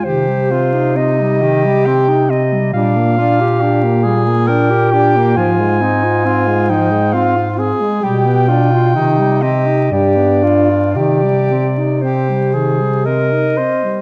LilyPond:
<<
  \new Staff \with { instrumentName = "Clarinet" } { \time 3/4 \key c \minor \tempo 4 = 66 c''4 ees''4 g''8 ees''8 | f''4. r8 g''4 | aes''4. g''8 f''8 r8 | g''4. ees''8 d''4 |
d''4 c''4 ees''4 | }
  \new Staff \with { instrumentName = "Tenor saxophone" } { \time 3/4 \key c \minor g'8 f'8 ees'8 g'4 r8 | d'8 f'8 g'8 aes'8 bes'8 g'8 | f'8 ees'8 f'8 ees'8 f'8 aes'8 | g'8 f'8 ees'8 g'8 g'8 f'8 |
g'4 g'8 aes'8 bes'8 c''8 | }
  \new Staff \with { instrumentName = "Alto saxophone" } { \time 3/4 \key c \minor ees16 g16 c'16 ees'16 c'16 g16 ees16 g16 c'16 ees'16 c'16 g16 | g16 bes16 d'16 g'16 d'16 bes16 g16 bes16 d'16 g'16 d'16 bes16 | f16 aes16 c'16 f'16 c'16 aes16 f16 aes16 c'16 f'16 c'16 aes16 | g16 b16 d'16 f'16 ees16 g16 c'16 ees'16 g16 b16 d'16 f'16 |
ees16 g16 c'16 ees'16 c'16 g16 ees16 g16 c'16 ees'16 c'16 g16 | }
  \new Staff \with { instrumentName = "Bass clarinet" } { \clef bass \time 3/4 \key c \minor c2. | bes,2. | aes,2~ aes,8 r8 | b,4 c4 g,4 |
c2~ c8 r8 | }
>>